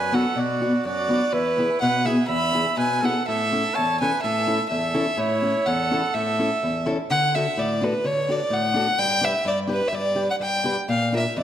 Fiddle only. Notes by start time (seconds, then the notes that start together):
Already playing: G#5
0.14 F#5
0.37 D5
0.85 D5
1.33 B4
1.81 F#5
2.06 E5
2.28 B5
2.79 G#5
3.05 F#5
3.28 E5
3.75 A5
4.00 G#5
4.22 E5
4.69 E5
5.18 C#5
5.66 F#5
6.14 E5
7.10 F#5
7.35 E5
7.59 D5
7.83 B4
8.06 C#5
8.31 D5
8.54 F#5
8.99 G5
9.24 E5
9.47 D5
9.72 B4
9.88 E5
9.95 D5
10.30 F#5
10.42 G5
10.89 F5
11.16 E5
11.39 D5